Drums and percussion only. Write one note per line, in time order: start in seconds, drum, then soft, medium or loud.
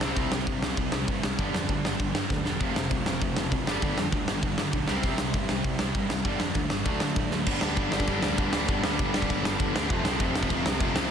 0.01 snare loud
0.17 kick loud
0.17 open hi-hat medium
0.32 snare loud
0.47 kick loud
0.47 open hi-hat medium
0.62 snare loud
0.77 kick loud
0.77 open hi-hat medium
0.92 snare loud
1.08 kick loud
1.08 open hi-hat medium
1.23 snare loud
1.39 kick loud
1.39 open hi-hat medium
1.54 snare loud
1.69 kick loud
1.69 open hi-hat medium
1.85 snare loud
2.00 kick loud
2.00 open hi-hat medium
2.15 snare loud
2.30 kick loud
2.30 snare medium
2.45 snare medium
2.61 kick loud
2.61 open hi-hat medium
2.76 snare loud
2.91 kick loud
2.91 open hi-hat medium
3.06 snare loud
3.22 kick loud
3.22 open hi-hat medium
3.37 snare loud
3.51 kick loud
3.51 open hi-hat medium
3.67 snare loud
3.82 kick loud
3.82 open hi-hat medium
3.98 snare loud
4.12 kick loud
4.12 open hi-hat medium
4.28 snare loud
4.43 kick loud
4.43 open hi-hat medium
4.58 snare loud
4.73 kick loud
4.73 open hi-hat medium
4.88 snare loud
5.03 kick loud
5.03 open hi-hat medium
5.18 snare loud
5.33 kick loud
5.33 open hi-hat medium
5.49 snare loud
5.64 kick loud
5.64 open hi-hat medium
5.79 snare loud
5.95 kick loud
5.95 open hi-hat medium
6.10 snare loud
6.25 kick loud
6.25 open hi-hat medium
6.40 snare loud
6.54 kick loud
6.54 open hi-hat medium
6.70 snare loud
6.85 kick loud
6.85 open hi-hat medium
7.00 snare loud
7.16 kick loud
7.16 open hi-hat medium
7.31 snare medium
7.46 kick loud
7.46 crash loud
7.46 crash medium
7.61 snare loud
7.76 kick loud
7.76 crash medium
7.92 snare loud
8.00 kick medium
8.07 kick loud
8.07 crash medium
8.23 snare loud
8.38 kick loud
8.38 crash medium
8.53 snare loud
8.68 kick loud
8.68 crash medium
8.84 snare loud
8.99 kick loud
8.99 crash medium
9.14 snare loud
9.22 kick medium
9.30 kick loud
9.30 crash medium
9.45 snare loud
9.60 kick loud
9.60 crash medium
9.76 snare loud
9.90 kick loud
9.90 crash medium
10.05 snare loud
10.20 kick loud
10.20 crash medium
10.35 snare loud
10.43 kick medium
10.50 kick loud
10.50 crash medium
10.66 snare loud
10.80 kick loud
10.80 crash medium
10.96 snare loud